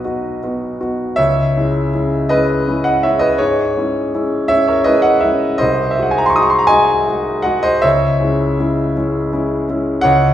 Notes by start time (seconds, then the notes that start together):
Already playing: B1 B3 D#4 F#4 B4 D#5
0.04 B3 D#4 F#4
0.43 B3 D#4 F#4
0.80 B3 D#4 F#4
1.16 C#2 C#5 E5
1.57 G#3 C#4 E4
1.94 G#3 C#4 E4
2.29 G#3 C#4 E4 B4 D#5
2.68 G#3 C#4 E4
2.84 D#5 F#5
3.03 G#3 C#4 E4 C#5 E5
3.19 B4 D#5
3.38 G#2 G#4 C#5
3.77 G#3 C#4 E4
4.14 G#3 C#4 E4
4.48 G#3 C#4 E4 C#5 E5
4.68 A#4 C#5
4.84 G#3 C#4 E4 B4 D#5
5.02 D#5 F#5
5.20 G#3 C#4 E4 C#5 E5
5.58 C2 C5 D#5
5.91 E5
5.97 G#3 D#4 F#4
6.02 F#5
6.11 G#5
6.18 A#5
6.26 C6 C#6
6.34 G#3 D#4 F#4 D#6
6.43 C#6
6.50 C6
6.59 A#5
6.67 G#3 D#4 F#4 D#5 G#5
7.07 G#3 D#4 F#4
7.42 G#3 D#4 F#4 D#5 F#5
7.63 C5 D#5
7.82 C#2 C#5 E5
8.20 G#3 C#4 E4
8.60 G#3 C#4 E4
8.96 G#3 C#4 E4
9.32 G#3 C#4 E4
9.68 G#3 C#4 E4
10.01 C#2 C#5 F#5